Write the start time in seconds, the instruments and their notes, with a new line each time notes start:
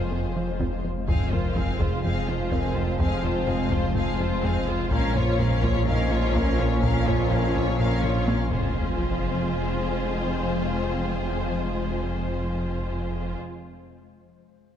Already playing: double bass section F1, sub bass F1, trombone section F2 F3, cello section F2, ambient pad F3 G#3 F4 C5, french horn section G#3 C4, felt piano A#3 A#4 C5, viola section F4, violin section G#4 C5
0.12 analog synth bass F2
0.36 analog synth bass F3
0.60 analog synth bass F2, taiko
0.85 analog synth bass F2
1.07 sub bass F1, double bass section F1, cello section F2, trombone section F2 F3, analog synth bass F2, ambient pad F3 G#3 F4 C5, french horn section G#3 C4, viola section C4, violin section G#4 F5, taiko, sub drop
1.32 analog synth bass F2, viola section F4, violin section F4 C5, felt piano A#4, taiko low
1.56 analog synth bass F2, viola section C4, violin section G#4 F5, taiko low
1.79 analog synth bass F2, violin section F4 C5, viola section F4, felt piano G#4, taiko
2.03 analog synth bass F2, viola section C4, violin section G#4 F5, taiko low
2.28 analog synth bass F2, violin section F4 C5, viola section F4
2.51 analog synth bass F2, viola section C4, violin section G#4 F5, felt piano A#4, taiko
2.75 analog synth bass F2, viola section F4, violin section F4 C5
2.99 analog synth bass F2, viola section C4, violin section G#4 F5, taiko
3.23 analog synth bass F2, violin section F4 C5, viola section F4, taiko low
3.48 analog synth bass F2, viola section C4, violin section G#4 F5, taiko low
3.71 analog synth bass F2, viola section F4, violin section F4 C5, taiko
3.95 analog synth bass F2, viola section C4, violin section G#4 F5, taiko low
4.19 analog synth bass F2, viola section F4, violin section F4 C5
4.43 analog synth bass F2, viola section C4, violin section G#4 F5, taiko
4.68 analog synth bass F2, viola section F4, violin section F4 C5
4.91 double bass section A#1, sub bass A#1, trombone section F2 F3, cello section A#2, analog synth bass A#2, ambient pad F3 A#3 C#4 F4, french horn section A#3 C#4, viola section C#4, violin section A#4 F5, taiko
5.15 analog synth bass A#2, viola section F4, felt piano C5, violin section C#5, taiko low
5.39 analog synth bass A#2, viola section C#4, violin section A#4 F5, taiko low
5.63 analog synth bass A#2, viola section F4, violin section C#5, taiko
5.87 analog synth bass A#2, viola section C#4, felt piano D#4 D#5, violin section A#4 F5, taiko low
6.11 analog synth bass A#2, viola section F4, violin section C#5
6.35 analog synth bass A#2, viola section C#4, violin section A#4 F5, taiko
6.59 analog synth bass A#2, viola section F4, violin section C#5
6.83 analog synth bass A#2, viola section C#4, violin section A#4 F5, taiko
7.07 analog synth bass A#2, viola section F4, violin section C#5, taiko low
7.31 analog synth bass A#2, viola section C#4, violin section A#4 F5, taiko low
7.55 analog synth bass A#2, viola section F4, violin section C#5, taiko
7.79 analog synth bass A#2, viola section C#4, felt piano F4 F5, violin section A#4 F5, taiko low
8.03 analog synth bass A#2, viola section F4, violin section C#5, taiko low-mid
8.27 analog synth bass A#2, viola section C#4, violin section A#4 F5, taiko high
8.51 sub bass F1, double bass section F1, trombone section F2 F3, cello section F2, ambient pad F3 G#3 F4 C5, french horn section G#3 C4, viola section F4, violin section G#4 C5, taiko, sub drop